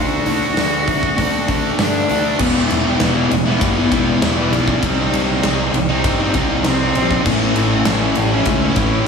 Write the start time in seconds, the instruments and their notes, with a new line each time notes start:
Already playing: fingered electric bass D2, distorted electric guitar D3 A3
0.00 distorted electric guitar D4, cello F#4
0.26 fingered electric bass D2, distorted electric guitar D3 A3 D4, open hi-hat
0.57 fingered electric bass D2, distorted electric guitar D3 A3 D4, snare, open hi-hat
0.88 distorted electric guitar D3 A3 D4, kick, open hi-hat
1.03 kick
1.17 fingered electric bass D2, distorted electric guitar D3 A3 D4, kick, open hi-hat
1.48 fingered electric bass D2, distorted electric guitar D3 A3 D4, kick, open hi-hat
1.79 fingered electric bass G2, distorted electric guitar D3 A3 D4, cello D4, snare, open hi-hat
2.09 fingered electric bass D2, distorted electric guitar D3 A3 D4, clean electric guitar F#4, open hi-hat
2.38 fingered electric bass E1, distorted electric guitar E3 G3 B3 E4, cello B3, kick, crash
2.54 distorted electric guitar G3 B3 E4
2.70 fingered electric bass E1, ride
2.78 cello A3
2.84 cello B3
3.00 fingered electric bass E1, distorted electric guitar E3 G3 B3 E4, snare, ride
3.14 distorted electric guitar G3 B3 E4
3.31 fingered electric bass E1, cello A3, muted distorted electric guitar stroke, ride
3.46 distorted electric guitar G3 B3 E4
3.61 fingered electric bass G1, cello B3, kick, ride
3.76 distorted electric guitar G3 B3 E4
3.92 fingered electric bass E1, distorted electric guitar E3 G3 B3 E4, kick, ride
4.21 fingered electric bass E1, distorted electric guitar E3 G3 B3 E4, cello G3, snare, ride
4.38 distorted electric guitar G3 B3 E4
4.51 fingered electric bass B1, distorted electric guitar E3 G3 B3, ride
4.56 distorted electric guitar E4
4.68 distorted electric guitar B3 E4, kick
4.72 distorted electric guitar G3
4.82 fingered electric bass C2, distorted electric guitar C3 G3 C4, cello G3, kick, ride
4.87 distorted electric guitar D#4
4.99 distorted electric guitar G3 C4 D#4
5.13 fingered electric bass C2, ride
5.43 fingered electric bass C2, distorted electric guitar C3 G3 C4 D#4, snare, ride
5.59 distorted electric guitar G3 C4 D#4
5.73 fingered electric bass C2, muted distorted electric guitar stroke, ride
5.89 distorted electric guitar G3 C4 D#4
6.04 fingered electric bass G2, kick, ride
6.19 distorted electric guitar G3 C4 D#4
6.34 fingered electric bass C2, distorted electric guitar C3 G3 C4 D#4, kick, ride
6.64 fingered electric bass C2, distorted electric guitar C3 G3 C4, cello C4, snare, ride
6.69 distorted electric guitar D#4
6.81 distorted electric guitar G3 C4 D#4
6.95 fingered electric bass A#1, distorted electric guitar C3 G3 C4, ride
7.00 distorted electric guitar D#4
7.11 distorted electric guitar G3 C4 D#4, kick
7.26 fingered electric bass A1, distorted electric guitar A2 E3 A3 C#4, cello A3, kick, crash
7.30 distorted electric guitar E4
7.43 distorted electric guitar A3 C#4 E4
7.56 fingered electric bass A1, ride
7.71 cello A3
7.85 fingered electric bass A1, distorted electric guitar A2 E3 A3, snare, ride
7.90 distorted electric guitar C#4 E4
8.01 distorted electric guitar A3 C#4 E4
8.15 fingered electric bass A1, cello G3, muted distorted electric guitar stroke, ride
8.32 distorted electric guitar A3 C#4 E4
8.46 fingered electric bass C#2, cello A3, kick, ride
8.61 distorted electric guitar A3 C#4 E4
8.76 fingered electric bass A1, distorted electric guitar E3 A3 C#4 E4, kick, ride
9.01 cello E3